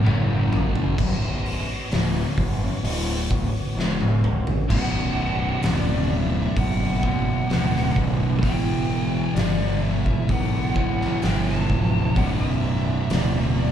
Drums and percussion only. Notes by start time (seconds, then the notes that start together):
0.06 mid tom
0.53 floor tom
0.75 floor tom
0.98 kick, crash
1.46 open hi-hat
1.91 snare, open hi-hat
2.38 kick, open hi-hat
2.85 open hi-hat
3.31 kick, open hi-hat
3.79 snare
4.01 high tom
4.24 mid tom
4.47 floor tom
4.70 kick, crash
5.63 snare, open hi-hat
6.57 kick, open hi-hat
7.03 kick
7.50 snare, open hi-hat
7.76 snare
7.96 kick
8.43 kick, open hi-hat
9.36 snare, open hi-hat
10.06 kick
10.29 kick, open hi-hat
10.76 kick
11.01 snare
11.22 snare, open hi-hat
11.48 snare
11.70 kick
12.16 kick, open hi-hat
13.10 snare, open hi-hat